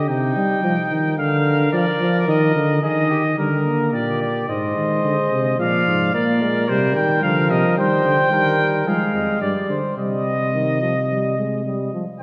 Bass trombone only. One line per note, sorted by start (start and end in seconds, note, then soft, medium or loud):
0.00 0.11 D3 medium
0.09 0.35 C3 medium
0.36 0.63 G3 medium
0.63 0.76 F3 medium
0.91 1.19 D#3 medium
1.18 1.73 D3 medium
1.73 1.85 F3 medium
2.00 2.27 F3 loud
2.28 2.55 D#3 loud
2.55 2.82 D3 medium
2.83 3.37 D#3 medium
3.38 3.95 D3 medium
3.93 4.48 A#2 medium
4.48 4.75 G#2 medium
4.77 5.04 D#3 medium
5.04 5.17 D3 medium
5.32 5.59 C3 medium
5.60 5.86 A#2 medium
5.87 6.14 G#2 medium
6.14 6.71 A#2 medium
6.69 6.98 C3 medium
6.96 7.23 D#3 medium
7.24 7.50 D3 medium
7.50 7.63 C3 medium
7.78 8.04 D#3 medium
8.05 8.17 D3 medium
8.32 8.85 D#3 medium
8.87 8.99 F3 medium
9.14 9.26 F2 medium
9.42 9.54 G2 medium
9.69 9.82 D3 medium
9.97 11.89 C3 medium